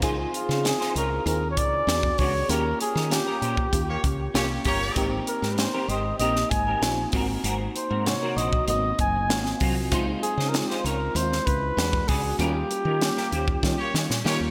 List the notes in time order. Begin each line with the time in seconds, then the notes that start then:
0.02 C#2 C4 D#4 F4 G#4 C5, kick, closed hi-hat
0.18 muted clean electric guitar stroke
0.33 F4, muted clean electric guitar stroke, closed hi-hat
0.49 C#3 D#4 F4 C5, snare
0.63 C4 D#4 E4 G#4, muted clean electric guitar stroke, snare, closed hi-hat
0.71 F4
0.80 D#4 F4 C5, snare
0.95 C#2 D#4 F4 A#4 C#5, closed hi-hat
1.11 muted clean electric guitar stroke
1.26 D#2 C4 D#4 F4 G#4 A#4, muted clean electric guitar stroke, closed hi-hat
1.42 muted clean electric guitar stroke
1.51 C#5
1.57 C#2 D5, kick, closed hi-hat
1.73 muted clean electric guitar stroke
1.87 E2 B3 D4 F#4 G4, snare, closed hi-hat
1.95 G#4
2.03 muted clean electric guitar stroke, kick
2.18 C#2 G#3 D4 F#4 C#5, kick, open hi-hat
2.35 muted clean electric guitar stroke
2.49 D#2 A#3 C#4 F4 G4 A#4, closed hi-hat
2.66 muted clean electric guitar stroke
2.81 G#4, muted clean electric guitar stroke, closed hi-hat
2.95 D#3 C#4 G4 A#4, snare
3.10 A#3 C#4 F4 G4, muted clean electric guitar stroke, snare, closed hi-hat
3.27 C#4 G4 A#4
3.42 A#2 C#4 G4 C5, closed hi-hat
3.57 muted clean electric guitar stroke, kick
3.72 D#2 A#3 C#4 F4 G4, muted clean electric guitar stroke, kick, closed hi-hat
3.87 A#3 G4 C#5, muted clean electric guitar stroke
4.04 C#2, kick, closed hi-hat
4.20 muted clean electric guitar stroke
4.34 C2 A#3 C#4 F4 G4 C#5, muted clean electric guitar stroke, snare, closed hi-hat
4.50 muted clean electric guitar stroke
4.65 G1 A#3 C#4 G4 A#4 C#5, kick, open hi-hat
4.81 muted clean electric guitar stroke
4.95 G#1 A#3 C4 D#4 G4 A#4, kick, closed hi-hat
5.11 muted clean electric guitar stroke
5.27 A#4, muted clean electric guitar stroke, closed hi-hat
5.42 G#2 C4 G4 A#4, snare
5.52 B4
5.58 A#3 C4 D#4 G4 C5, muted clean electric guitar stroke, snare, closed hi-hat
5.73 C4 G4 A#4
5.88 G#1 C4 G4 C5 D#5, closed hi-hat
6.05 muted clean electric guitar stroke
6.19 A#1 A#3 C4 D#4 G4 A#4 D#5, closed hi-hat
6.36 muted clean electric guitar stroke, snare
6.50 G#1 G#5, muted clean electric guitar stroke, kick, closed hi-hat
6.67 C4 G4 A#4
6.81 A#1 A#3 C4 D#4 F4, snare, closed hi-hat
6.98 muted clean electric guitar stroke
7.12 G#1 A#3 C4 D#4 F#4 A#4, kick, open hi-hat
7.29 muted clean electric guitar stroke
7.44 G#1 C4 F#4 A#4, closed hi-hat
7.60 muted clean electric guitar stroke
7.75 C5, muted clean electric guitar stroke, closed hi-hat
7.90 G#2 C4 F#4 A#4
8.06 C3 A#3 D#4 F#4 C#5, muted clean electric guitar stroke, snare, closed hi-hat
8.22 C4 F#4 A#4
8.36 A#1 C4 F#4 C5 D#5, closed hi-hat
8.53 muted clean electric guitar stroke, kick
8.67 G#1 A#3 B3 D#4 F#4 D#5, muted clean electric guitar stroke, closed hi-hat
8.74 C4
8.84 muted clean electric guitar stroke
8.99 F#1 G#5, kick, closed hi-hat
9.15 muted clean electric guitar stroke
9.29 G#1 A#3 C4 F4 F#4, snare, closed hi-hat
9.46 muted clean electric guitar stroke, snare
9.60 C2 F#3 C4 F4, kick, open hi-hat
9.76 muted clean electric guitar stroke
9.91 C#2 G#3 C4 D#4 F4 C5, kick, closed hi-hat
10.07 muted clean electric guitar stroke
10.23 G#4, muted clean electric guitar stroke, closed hi-hat
10.37 C#3 D#4 F4 C5, snare
10.49 A#4
10.53 G#3 C4 D#4 F4, muted clean electric guitar stroke, snare, closed hi-hat
10.58 G#4
10.67 G4 C5, snare
10.71 D#4 F4
10.76 G#4 C5
10.84 C#2 D#4 F4 A#4 C#5, closed hi-hat
11.00 muted clean electric guitar stroke
11.15 D#2 G#3 C4 D#4 E4 C5, muted clean electric guitar stroke, closed hi-hat
11.23 F4
11.31 muted clean electric guitar stroke, snare
11.46 C#2 B4, kick, closed hi-hat
11.62 muted clean electric guitar stroke
11.77 E2 G3 B3 D4 F#4, muted clean electric guitar stroke, snare, closed hi-hat
11.83 G#3
11.92 muted clean electric guitar stroke, kick
12.08 C#2 F#4 G#4 D5, kick, open hi-hat
12.23 muted clean electric guitar stroke
12.38 D#2 G3 A#3 C#4 F4 G4 A#4, closed hi-hat
12.54 muted clean electric guitar stroke
12.70 muted clean electric guitar stroke, closed hi-hat
12.85 D#3 C#4 G4 A#4
13.00 G3 A#3 C#4 F4, muted clean electric guitar stroke, snare, closed hi-hat
13.17 C#4 G4 A#4, snare
13.32 D#2 C#4 G4 C5, closed hi-hat
13.48 muted clean electric guitar stroke, kick
13.62 D#3 G3 A#3 C#4 F4, muted clean electric guitar stroke, kick, snare
13.78 A#3 G4 C#5, muted clean electric guitar stroke
13.94 D#3, snare
14.10 A#2, muted clean electric guitar stroke, snare
14.24 D#3 G3 A#3 C#4 F4 G4 A#4 C#5, snare
14.40 D#2, muted clean electric guitar stroke